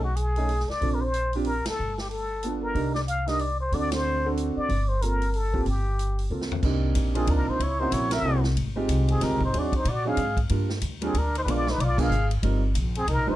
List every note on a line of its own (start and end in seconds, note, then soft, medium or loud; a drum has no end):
0.00 0.65 B1 medium
0.00 0.17 F#4 medium
0.16 0.71 G#4 medium
0.16 closed hi-hat soft
0.36 0.48 A3 medium
0.36 0.48 C#4 medium
0.36 0.48 D#4 medium
0.36 0.49 G#4 medium
0.36 open hi-hat soft
0.49 open hi-hat soft
0.60 snare soft
0.69 0.96 D5 medium
0.69 muted upright bass stroke soft
0.69 snare soft
0.81 1.62 A#1 medium
0.81 0.99 C4 medium
0.81 1.00 D4 medium
0.81 1.00 F4 medium
0.81 1.00 A4 medium
0.81 kick soft
0.81 open hi-hat soft
0.94 1.03 A#4 medium
1.01 1.34 C5 medium
1.14 closed hi-hat soft
1.33 1.46 C4 medium
1.33 1.46 D4 medium
1.33 1.46 F4 medium
1.33 1.46 G4 medium
1.33 open hi-hat soft
1.45 1.65 A#4 medium
1.45 open hi-hat soft
1.65 2.01 A4 medium
1.65 muted upright bass stroke soft
1.65 snare medium
1.65 ride medium
1.79 2.72 G1 medium
1.98 2.09 G4 medium
1.98 snare soft
2.10 2.59 A4 medium
2.10 open hi-hat soft
2.43 2.76 B3 medium
2.43 2.73 D4 medium
2.43 2.77 F4 medium
2.43 2.77 A4 medium
2.43 closed hi-hat soft
2.63 2.93 A#4 medium
2.74 3.68 C2 medium
2.74 2.93 D4 medium
2.74 2.93 D#4 medium
2.74 2.93 G4 medium
2.74 2.94 A#4 medium
2.74 kick soft
2.74 open hi-hat soft
2.95 3.01 D5 medium
2.95 snare soft
3.08 3.30 F5 medium
3.08 closed hi-hat medium
3.27 3.38 D4 medium
3.27 3.39 D#4 medium
3.27 3.39 G4 medium
3.27 3.39 A#4 medium
3.27 3.42 D#5 medium
3.27 snare soft
3.27 open hi-hat soft
3.39 3.60 D5 medium
3.39 open hi-hat soft
3.60 3.76 C5 medium
3.72 4.53 D2 medium
3.72 4.21 C4 medium
3.72 4.21 D4 medium
3.72 4.21 F#4 medium
3.72 4.21 A4 medium
3.72 3.95 D5 medium
3.72 kick soft
3.72 open hi-hat soft
3.92 4.29 C5 medium
3.92 snare medium
3.92 ride medium
4.25 4.67 C4 medium
4.25 4.68 D4 medium
4.25 4.68 F#4 medium
4.25 4.68 A4 medium
4.37 closed hi-hat soft
4.56 4.90 D5 medium
4.56 muted upright bass stroke soft
4.69 5.62 G1 medium
4.69 kick soft
4.69 open hi-hat soft
4.89 5.04 C5 medium
5.01 5.19 A#3 medium
5.01 5.20 C4 medium
5.01 5.20 F4 soft
5.01 5.20 A4 medium
5.01 5.37 A#4 medium
5.01 closed hi-hat soft
5.22 open hi-hat soft
5.34 5.67 A4 medium
5.34 open hi-hat soft
5.53 5.65 A#3 medium
5.53 5.65 C4 medium
5.53 5.65 F4 medium
5.53 5.65 G4 medium
5.53 kick soft
5.66 6.27 G1 medium
5.66 6.28 G4 medium
5.66 kick soft
5.66 open hi-hat soft
5.99 closed hi-hat soft
6.19 open hi-hat soft
6.30 6.61 C#2 medium
6.30 6.62 A#3 medium
6.30 6.63 C4 soft
6.30 6.64 F4 soft
6.30 6.64 A4 medium
6.41 snare medium
6.52 floor tom medium
6.63 6.94 C2 medium
6.63 7.11 A#3 medium
6.63 7.12 C4 medium
6.63 7.12 D4 medium
6.63 7.12 D#4 medium
6.63 7.12 G4 medium
6.63 kick medium
6.63 crash medium
6.95 7.26 A#1 medium
6.95 kick soft
6.95 hi-hat pedal soft
6.95 ride medium
7.15 7.57 A#3 medium
7.15 7.57 C4 medium
7.15 7.29 C4 medium
7.15 7.57 D4 medium
7.15 7.57 D#4 medium
7.15 7.58 F4 medium
7.15 7.32 G#4 medium
7.15 ride soft
7.27 7.37 D#2 medium
7.27 7.50 D4 medium
7.27 7.51 A#4 medium
7.27 kick soft
7.27 ride medium
7.37 7.46 C2 medium
7.47 7.58 A#1 medium
7.47 7.61 D#4 medium
7.47 7.64 C5 medium
7.59 7.91 C#2 medium
7.59 7.81 E4 medium
7.59 7.82 C#5 medium
7.59 kick soft
7.59 ride medium
7.79 8.22 A#3 medium
7.79 8.22 C4 medium
7.79 8.22 C#4 medium
7.79 7.92 D#4 medium
7.79 8.22 E4 medium
7.79 8.23 F#4 medium
7.79 7.95 C5 medium
7.90 8.22 A#1 medium
7.90 8.11 E4 medium
7.90 8.12 C#5 medium
7.90 kick soft
7.90 hi-hat pedal medium
7.90 ride medium
8.11 8.41 A#4 medium
8.11 8.42 E5 loud
8.11 snare medium
8.11 ride medium
8.22 8.54 C2 medium
8.22 8.42 A#3 medium
8.22 8.42 C4 medium
8.22 8.42 C#4 medium
8.22 8.42 E4 medium
8.26 8.43 F#4 medium
8.44 snare medium
8.56 8.87 G#1 medium
8.56 kick soft
8.56 ride medium
8.76 9.18 G#3 medium
8.76 9.18 C4 medium
8.76 9.18 D#4 medium
8.76 9.18 F4 medium
8.76 9.19 G4 medium
8.88 9.20 C2 loud
8.88 kick soft
8.88 hi-hat pedal medium
8.88 ride medium
9.08 9.25 C4 medium
9.08 9.25 G#4 medium
9.08 ride soft
9.20 9.32 D2 medium
9.20 9.39 G#3 medium
9.20 9.38 C4 medium
9.20 9.39 D#4 medium
9.20 9.42 D#4 medium
9.20 9.39 F4 medium
9.20 9.39 G4 medium
9.20 9.42 A#4 medium
9.20 kick soft
9.20 snare soft
9.20 ride medium
9.32 9.42 C2 medium
9.41 9.53 G#1 medium
9.41 kick medium
9.45 9.59 D#4 medium
9.45 9.61 C5 medium
9.53 9.84 D#2 medium
9.53 9.71 F#3 medium
9.53 9.71 C4 medium
9.53 9.71 D4 medium
9.53 9.71 D#4 medium
9.53 9.71 G#4 medium
9.53 kick soft
9.53 ride medium
9.57 9.75 F#4 medium
9.57 9.76 D5 medium
9.72 9.90 C5 medium
9.72 kick medium
9.72 ride soft
9.77 9.91 D#4 medium
9.85 10.16 A#2 medium
9.85 10.09 D5 medium
9.85 kick soft
9.85 ride medium
9.90 10.10 F#4 medium
10.05 10.16 F#3 medium
10.05 10.17 C4 medium
10.05 10.17 D4 medium
10.05 10.17 D#4 medium
10.05 10.17 G#4 medium
10.05 10.39 G#4 medium
10.05 10.38 F5 medium
10.17 10.48 G#2 medium
10.17 kick soft
10.17 hi-hat pedal medium
10.17 ride medium
10.37 kick medium
10.37 ride soft
10.49 10.81 G2 medium
10.49 10.68 G3 medium
10.49 10.67 A#3 medium
10.49 10.68 D4 medium
10.49 10.68 F4 medium
10.49 10.68 A#4 medium
10.49 kick soft
10.49 ride medium
10.69 snare medium
10.82 11.13 D#2 medium
10.82 kick soft
10.82 hi-hat pedal medium
10.82 ride medium
11.01 11.13 G3 medium
11.01 11.13 A#3 medium
11.01 11.19 C4 medium
11.01 11.13 D4 medium
11.01 11.13 F4 medium
11.01 11.20 G#4 medium
11.01 11.14 A#4 medium
11.01 ride soft
11.14 11.45 D2 medium
11.14 11.35 D4 medium
11.14 kick soft
11.14 ride medium
11.18 11.36 A#4 medium
11.35 11.41 D#4 medium
11.35 11.41 C5 medium
11.35 ride medium
11.43 11.77 A#1 medium
11.43 11.64 G#3 medium
11.43 11.64 B3 medium
11.43 11.51 D4 medium
11.43 11.52 B4 medium
11.43 kick soft
11.47 11.64 D4 medium
11.47 11.64 F4 medium
11.47 11.72 F4 medium
11.47 11.64 A#4 medium
11.47 11.73 D5 loud
11.47 ride medium
11.67 11.85 D#4 medium
11.67 snare medium
11.71 11.82 B4 medium
11.78 12.09 B1 medium
11.78 12.03 D5 medium
11.78 kick soft
11.78 ride medium
11.83 12.01 F4 medium
11.97 12.09 G#3 medium
11.97 12.09 B3 medium
11.97 12.09 D4 medium
11.97 12.09 F4 medium
11.97 12.31 G#4 medium
11.97 12.09 A#4 medium
11.97 kick medium
11.97 crash medium
12.01 12.32 F5 loud
12.10 12.41 G#1 medium
12.10 hi-hat pedal medium
12.31 ride medium
12.42 12.74 G1 medium
12.42 12.60 G3 medium
12.42 12.61 C4 medium
12.42 12.60 D#4 medium
12.42 12.61 F4 medium
12.42 12.61 A#4 medium
12.42 kick soft
12.42 ride medium
12.74 13.06 A#1 medium
12.74 kick soft
12.74 hi-hat pedal medium
12.74 ride medium
12.95 13.07 C4 medium
12.95 13.08 G#4 medium
12.95 ride soft
13.07 13.16 C2 medium
13.07 13.30 D#4 medium
13.07 13.32 A#4 medium
13.07 kick soft
13.07 ride medium
13.16 13.26 A#1 medium
13.26 13.36 G1 medium
13.26 13.36 G3 medium
13.26 13.36 D4 medium
13.26 13.36 D#4 medium
13.26 13.36 F4 medium
13.26 13.36 B4 medium
13.30 13.36 C5 medium